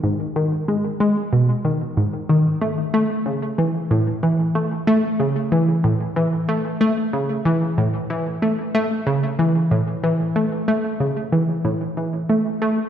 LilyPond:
\new Staff \with { instrumentName = "Synth arpeggio sound" } { \clef bass \time 4/4 \key a \lydian \tempo 4 = 93 gis,8 dis8 gis8 gis8 b,8 dis8 gis,8 dis8 | a8 a8 cis8 e8 a,8 e8 a8 a8 | cis8 e8 a,8 e8 a8 a8 cis8 e8 | a,8 e8 a8 a8 cis8 e8 a,8 e8 |
a8 a8 cis8 e8 a,8 e8 a8 a8 | }